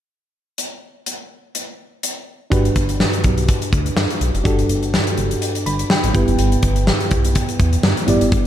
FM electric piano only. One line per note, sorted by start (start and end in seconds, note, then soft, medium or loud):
2.50 3.20 G2 medium
2.50 4.41 D4 medium
2.50 4.41 F#4 medium
2.50 4.42 G4 medium
2.50 4.42 B4 medium
4.44 5.14 G2 medium
4.44 6.10 D4 medium
4.44 6.11 F#4 medium
4.44 6.11 G4 medium
4.44 6.12 A4 medium
5.66 5.89 B5 medium
5.90 6.35 G5 medium
6.14 6.83 G2 medium
6.14 8.04 B3 medium
6.14 8.04 E4 medium
6.14 8.05 G4 medium
6.14 8.05 B4 medium
8.07 8.47 G2 medium
8.07 8.47 B3 medium
8.07 8.47 E4 medium
8.07 8.47 G4 medium
8.07 8.47 D5 medium